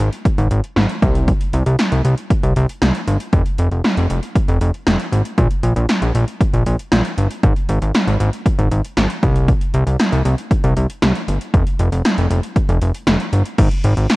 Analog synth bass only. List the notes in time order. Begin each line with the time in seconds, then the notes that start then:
0.38 G#1
0.51 G#1
0.77 G#1
1.02 C2
1.54 C2
1.66 C2
1.92 C2
2.05 C2
2.43 C2
2.56 C2
2.82 C2
3.07 G1
3.33 F1
3.59 F1
3.71 F1
3.97 F1
4.10 F1
4.48 F1
4.61 F1
4.87 F1
5.12 G#1
5.38 A#1
5.64 A#1
5.76 A#1
6.02 A#1
6.15 A#1
6.53 A#1
6.66 A#1
6.92 A#1
7.17 G1
7.43 G#1
7.69 G#1
7.82 G#1
8.07 G#1
8.20 G#1
8.58 G#1
8.71 G#1
8.97 G#1
9.23 C2
9.74 C2
9.87 C2
10.12 C2
10.25 C2
10.64 C2
10.77 C2
11.02 C2
11.28 G1
11.54 F1
11.79 F1
11.92 F1
12.18 F1
12.30 F1
12.69 F1
12.82 F1
13.07 F1
13.33 G1
13.59 G#1
13.84 G#1
13.97 G#1